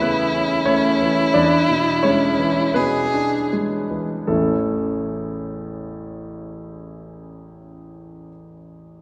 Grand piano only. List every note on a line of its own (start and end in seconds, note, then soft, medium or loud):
0.00 1.30 E2 soft
0.00 0.03 C#3 soft
0.00 0.54 C#3 soft
0.00 0.21 E3 soft
0.00 0.67 A3 soft
0.00 0.63 B3 medium
0.00 0.34 C#4 medium
0.00 0.67 B4 medium
0.00 0.66 C#5 medium
0.34 0.65 C#4 soft
0.66 1.21 A3 soft
0.66 1.30 C#4 medium
0.66 1.34 C#5 medium
1.01 1.35 E3 soft
1.34 4.24 E2 soft
1.34 2.00 D4 medium
1.34 2.04 D5 medium
1.70 2.26 B2 soft
2.03 2.61 G#3 soft
2.03 2.72 C#4 medium
2.03 2.75 C#5 medium
2.39 2.97 E3 soft
2.74 3.36 B2 soft
2.74 4.23 B3 soft
2.74 4.27 B4 medium
3.14 3.75 D4 soft
3.53 4.14 G#3 soft
3.90 4.27 E3 soft
4.27 8.29 A1 soft
4.27 8.28 E2 soft
4.27 8.29 E3 soft
4.27 8.29 A3 soft
4.27 8.30 C#4 soft
4.27 8.29 E4 soft
4.27 8.28 A4 soft